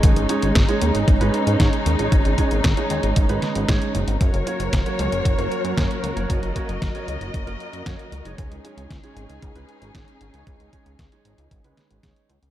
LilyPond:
<<
  \new Staff \with { instrumentName = "String section" } { \time 4/4 \key cis \mixolydian \tempo 4 = 115 << { dis'1~ | dis'1 | cis''1 | dis''1 |
gis'1~ | gis'1 | } \\ { <gis cis'>1~ | <gis cis'>1 | <fis fis' ais'>1~ | <fis fis' ais'>1 |
<cis' dis'>1~ | <cis' dis'>1 | } >> }
  \new Staff \with { instrumentName = "Grand piano" } { \time 4/4 \key cis \mixolydian <gis cis' dis' cis''>8 <gis cis' dis' cis''>16 r8 <gis cis' dis' cis''>4 <gis cis' dis' b'>8. <gis cis' dis' cis''>16 r8 <gis cis' dis' cis''>16~ | <gis cis' dis' cis''>8 <gis cis' dis' cis''>16 r8 <gis cis' dis' cis''>4 <gis cis' dis' b'>8. <gis cis' dis' cis''>8 r8 | r8 <ais cis' fis' cis''>16 r8 <ais cis' fis' cis''>4 <ais cis' fis' ais'>8. <ais cis' fis' cis''>16 r8 <ais cis' fis' cis''>16~ | <ais cis' fis' cis''>8 <ais cis' fis' cis''>16 r8 <ais cis' fis' cis''>4 <ais cis' fis' ais'>8. <ais cis' fis' cis''>16 r8 <gis cis' dis' cis''>16~ |
<gis cis' dis' cis''>8 <gis cis' dis' cis''>16 r8 <gis cis' dis' cis''>4 <gis cis' dis' b'>8. <gis cis' dis' cis''>16 r8 <gis cis' dis' cis''>16~ | <gis cis' dis' cis''>8 <gis cis' dis' cis''>16 r8 <gis cis' dis' cis''>4 <gis cis' dis' b'>8. <gis cis' dis' cis''>8 r8 | }
  \new Staff \with { instrumentName = "Analog synth bass" } { \clef bass \time 4/4 \key cis \mixolydian gis,,16 gis,,16 r16 gis,,16 gis,,16 r16 dis,16 gis,,16 gis,,16 gis,,16 r16 gis,16 gis,16 r16 dis,16 gis,,16 | gis,,16 gis,,16 r16 gis,,16 gis,,16 r16 dis,16 gis,,16 gis,,16 gis,,16 r16 gis,,16 gis,,16 r16 fis,,16 gis,,16 | fis,,16 fis,,16 r16 fis,,16 fis,,16 r16 cis,16 fis,,16 fis,,16 fis,,16 r16 fis,16 fis,16 r16 cis,16 fis,,16 | fis,,16 fis,,16 r16 fis,,16 fis,,16 r16 cis,16 fis,,16 fis,,16 fis,,16 r16 fis,16 fis,16 r16 cis,16 fis,,16 |
cis,16 cis,16 r16 cis,16 cis,16 r16 gis,,16 cis,16 cis,16 cis,16 r16 gis,,16 gis,,16 r16 gis,,16 cis,16 | cis,16 cis,16 r16 cis,16 cis,16 r16 gis,,16 cis,16 gis,,16 cis,16 r16 gis,,16 cis,16 r16 cis,16 cis,16 | }
  \new DrumStaff \with { instrumentName = "Drums" } \drummode { \time 4/4 <hh bd>16 hh16 hh16 hh16 <hh bd sn>16 hh16 hh16 hh16 <hh bd>16 hh16 hh16 hh16 <hh bd sn>16 hh16 hh16 hh16 | <hh bd>16 hh16 <hh bd>16 hh16 <hh bd sn>16 hh16 hh16 hh16 <hh bd>16 hh16 <hh sn>16 hh16 <hh bd sn>16 hh16 hh16 hh16 | <hh bd>16 hh16 hh16 hh16 <hh bd sn>16 hh16 hh16 hh16 <hh bd>16 hh16 hh16 hh16 <hh bd sn>16 hh16 hh16 hh16 | <hh bd>16 hh16 <hh bd>16 hh16 <hh bd sn>16 hh16 hh16 hh16 <hh bd>16 hh16 hh16 hh16 <hh bd sn>16 hh16 hh16 hh16 |
<hh bd>16 hh16 hh16 hh16 <hh bd sn>16 hh16 hh16 hh16 <hh bd>16 hh16 hh16 hh16 <hh bd sn>16 hh16 hh16 hh16 | <hh bd>16 hh16 <hh bd>16 hh16 <hh bd sn>16 hh16 hh16 hh16 <hh bd>16 hh16 <hh sn>16 hh16 <hh bd sn>16 hh16 hh16 hh16 | }
>>